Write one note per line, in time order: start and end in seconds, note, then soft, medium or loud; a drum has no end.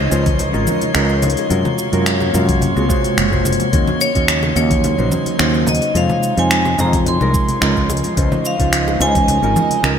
0.00 1.48 C#3 medium
0.00 1.48 F3 medium
0.00 1.48 D#4 medium
0.00 9.99 C#5 medium
0.00 1.47 D#5 medium
0.00 9.99 C6 medium
0.10 0.51 C#2 loud
0.10 0.50 G#3 medium
0.10 0.50 C#4 medium
0.10 0.50 D#4 medium
0.10 0.51 F4 medium
0.10 0.51 C5 loud
0.10 open hi-hat soft
0.10 shaker medium
0.26 kick loud
0.26 open hi-hat soft
0.26 low conga medium
0.26 shaker soft
0.39 open hi-hat medium
0.39 high conga medium
0.39 shaker soft
0.53 0.65 G#1 medium
0.53 0.91 G#3 medium
0.53 0.92 C#4 medium
0.53 0.92 D#4 medium
0.53 0.92 F4 medium
0.53 0.92 A#4 medium
0.53 shaker soft
0.67 low conga medium
0.67 shaker medium
0.81 open hi-hat soft
0.81 high conga medium
0.81 shaker soft
0.94 1.34 C#2 medium
0.94 1.47 G#3 medium
0.94 1.47 C#4 medium
0.94 1.47 D#4 medium
0.94 1.47 F4 medium
0.94 1.48 A#4 loud
0.94 finger snap loud
0.94 shaker soft
1.09 shaker soft
1.22 open hi-hat soft
1.22 high conga loud
1.22 low conga medium
1.22 shaker medium
1.30 open hi-hat medium
1.37 open hi-hat soft
1.37 high bongo medium
1.37 shaker soft
1.49 1.63 F#2 medium
1.49 1.89 C3 medium
1.49 3.71 C3 medium
1.49 1.89 G#3 medium
1.49 3.71 G#3 medium
1.49 5.91 A#3 medium
1.49 1.89 F4 medium
1.49 1.89 F#4 medium
1.49 1.90 A#4 loud
1.49 3.71 F5 medium
1.49 open hi-hat medium
1.49 shaker soft
1.65 high conga loud
1.65 low conga medium
1.65 shaker soft
1.78 shaker medium
1.92 2.31 F#2 medium
1.92 2.30 C3 medium
1.92 2.30 G#3 medium
1.92 2.31 F4 medium
1.92 2.31 F#4 medium
1.92 2.31 A#4 medium
1.92 open hi-hat soft
1.92 shaker soft
2.06 finger snap loud
2.06 open hi-hat medium
2.06 shaker soft
2.21 high bongo medium
2.21 high conga medium
2.21 shaker soft
2.33 2.73 F#2 loud
2.33 2.72 C3 medium
2.33 2.72 G#3 medium
2.33 2.73 F4 medium
2.33 2.73 F#4 medium
2.33 2.73 A#4 loud
2.33 open hi-hat soft
2.33 low conga medium
2.33 shaker medium
2.49 kick loud
2.49 open hi-hat soft
2.49 low conga medium
2.49 shaker soft
2.61 open hi-hat soft
2.61 high conga medium
2.61 shaker soft
2.75 2.88 C#2 medium
2.75 2.86 G#3 medium
2.75 2.87 C4 medium
2.75 2.87 F4 medium
2.75 2.87 F#4 medium
2.75 2.87 G#4 medium
2.75 high bongo medium
2.75 shaker soft
2.89 3.28 C3 loud
2.89 3.28 G#3 loud
2.89 3.28 F4 medium
2.89 3.28 F#4 medium
2.89 3.28 C5 loud
2.89 kick loud
2.89 shaker medium
3.04 open hi-hat soft
3.04 high conga medium
3.04 shaker soft
3.17 3.56 F#1 medium
3.17 finger snap medium
3.17 shaker soft
3.31 3.69 C3 medium
3.31 3.69 G#3 loud
3.31 3.70 F4 medium
3.31 3.70 F#4 medium
3.31 3.70 C5 loud
3.31 kick medium
3.31 shaker soft
3.45 open hi-hat soft
3.45 high bongo medium
3.45 high conga loud
3.45 shaker medium
3.53 open hi-hat medium
3.59 open hi-hat soft
3.59 low conga medium
3.59 shaker soft
3.72 3.85 D#2 medium
3.72 5.93 C#3 medium
3.72 5.93 F#3 medium
3.72 4.11 A#3 medium
3.72 4.12 C#4 medium
3.72 4.12 D#4 medium
3.72 7.86 D#4 medium
3.72 4.12 F#4 medium
3.72 4.12 C#5 loud
3.72 kick loud
3.72 open hi-hat medium
3.72 shaker soft
3.88 high conga medium
3.88 low conga medium
3.88 shaker soft
4.01 4.55 C#5 loud
4.01 shaker medium
4.15 4.53 D#2 medium
4.15 4.53 A#3 medium
4.15 4.53 C#4 medium
4.15 4.53 D#4 medium
4.15 4.53 F#4 medium
4.15 4.54 C#5 medium
4.15 kick medium
4.15 open hi-hat soft
4.15 shaker soft
4.28 finger snap loud
4.28 open hi-hat medium
4.28 shaker soft
4.43 high bongo medium
4.43 high conga medium
4.43 shaker soft
4.56 4.95 D#2 loud
4.56 4.95 A#3 medium
4.56 4.95 C#4 medium
4.56 4.95 D#4 medium
4.56 4.95 F#4 medium
4.56 5.08 C#5 loud
4.56 4.96 C#5 loud
4.56 open hi-hat soft
4.56 shaker medium
4.71 kick loud
4.71 open hi-hat soft
4.71 low conga medium
4.71 shaker soft
4.84 open hi-hat soft
4.84 high conga loud
4.84 shaker soft
4.98 5.10 A#1 medium
4.98 5.36 A#3 medium
4.98 5.36 C#4 medium
4.98 5.37 D#4 medium
4.98 5.37 F#4 medium
4.98 5.37 C5 medium
4.98 shaker soft
5.12 low conga medium
5.12 shaker medium
5.26 open hi-hat soft
5.26 high conga medium
5.26 shaker soft
5.39 5.78 D#2 loud
5.39 5.92 A#3 medium
5.39 5.92 C#4 medium
5.39 5.92 D#4 medium
5.39 5.92 F#4 medium
5.39 5.93 C5 loud
5.39 finger snap loud
5.39 shaker soft
5.54 shaker soft
5.66 5.97 D#5 medium
5.66 open hi-hat soft
5.66 high conga loud
5.66 low conga medium
5.66 shaker medium
5.75 open hi-hat medium
5.81 open hi-hat soft
5.81 high bongo soft
5.81 shaker soft
5.94 6.07 F2 medium
5.94 6.34 C3 medium
5.94 7.88 C3 medium
5.94 9.99 F3 medium
5.94 6.34 G#3 medium
5.94 7.88 G#3 medium
5.94 6.34 D#4 medium
5.94 6.34 F4 medium
5.94 6.34 C5 medium
5.94 6.36 F5 medium
5.94 open hi-hat medium
5.94 shaker soft
6.09 high conga medium
6.09 low conga medium
6.09 shaker soft
6.23 shaker medium
6.37 6.75 F2 medium
6.37 6.75 C3 medium
6.37 6.75 G#3 medium
6.37 6.75 D#4 medium
6.37 6.76 F4 medium
6.37 6.76 C5 medium
6.37 6.77 G#5 loud
6.37 open hi-hat soft
6.37 shaker soft
6.51 finger snap loud
6.51 open hi-hat medium
6.51 shaker soft
6.65 high bongo medium
6.65 high conga medium
6.65 shaker soft
6.78 7.17 F2 loud
6.78 7.17 C3 medium
6.78 7.17 G#3 medium
6.78 7.18 D#4 medium
6.78 7.18 F4 medium
6.78 7.18 C5 loud
6.78 6.92 A#5 loud
6.78 open hi-hat soft
6.78 low conga medium
6.78 shaker medium
6.93 kick loud
6.93 open hi-hat soft
6.93 low conga medium
6.93 shaker soft
7.06 7.87 C6 loud
7.06 open hi-hat medium
7.06 high conga medium
7.06 shaker soft
7.20 7.32 C2 medium
7.20 7.59 C3 medium
7.20 7.58 G#3 medium
7.20 7.59 D#4 medium
7.20 7.59 F4 medium
7.20 7.59 A#4 medium
7.20 high bongo medium
7.20 shaker soft
7.34 kick loud
7.34 shaker medium
7.49 open hi-hat soft
7.49 high conga medium
7.49 shaker soft
7.61 8.01 C#2 loud
7.61 8.14 G#3 loud
7.61 8.14 C#4 medium
7.61 8.14 D#4 medium
7.61 8.14 F4 medium
7.61 8.15 A#4 loud
7.61 finger snap loud
7.61 shaker soft
7.76 kick medium
7.76 shaker soft
7.90 9.99 C#3 medium
7.90 9.99 D#4 medium
7.90 9.99 D#5 medium
7.90 open hi-hat soft
7.90 high bongo medium
7.90 high conga medium
7.90 shaker medium
7.97 open hi-hat medium
8.03 open hi-hat soft
8.03 low conga medium
8.03 shaker soft
8.16 8.30 C#2 loud
8.16 8.56 G#3 medium
8.16 8.56 C#4 medium
8.16 8.56 D#4 medium
8.16 8.56 F4 medium
8.16 8.57 C5 loud
8.16 kick loud
8.16 open hi-hat medium
8.16 shaker soft
8.32 high conga medium
8.32 low conga medium
8.32 shaker soft
8.45 9.03 F5 loud
8.45 shaker medium
8.59 8.98 C#2 medium
8.59 8.97 G#3 medium
8.59 8.97 C#4 medium
8.59 8.98 D#4 medium
8.59 8.98 F4 medium
8.59 8.98 C5 medium
8.59 kick medium
8.59 open hi-hat soft
8.59 shaker soft
8.73 finger snap loud
8.73 open hi-hat medium
8.73 shaker soft
8.87 high bongo medium
8.87 high conga medium
8.87 shaker soft
9.00 9.39 C#2 loud
9.00 9.39 G#3 medium
9.00 9.39 C#4 medium
9.00 9.39 D#4 medium
9.00 9.40 F4 medium
9.00 9.40 C5 loud
9.00 9.81 G#5 loud
9.00 open hi-hat soft
9.00 shaker medium
9.15 kick loud
9.15 open hi-hat soft
9.15 low conga medium
9.15 shaker soft
9.28 open hi-hat medium
9.28 high conga medium
9.28 shaker soft
9.42 9.54 G#1 medium
9.42 9.80 G#3 medium
9.42 9.81 C#4 medium
9.42 9.81 D#4 medium
9.42 9.81 F4 medium
9.42 9.81 A#4 medium
9.42 shaker soft
9.56 low conga medium
9.56 shaker medium
9.71 open hi-hat soft
9.71 high conga medium
9.71 shaker soft
9.83 9.99 C#2 loud
9.83 9.99 G#3 loud
9.83 9.99 C#4 medium
9.83 9.99 D#4 medium
9.83 9.99 F4 medium
9.83 9.99 A#4 loud
9.83 finger snap medium
9.83 shaker soft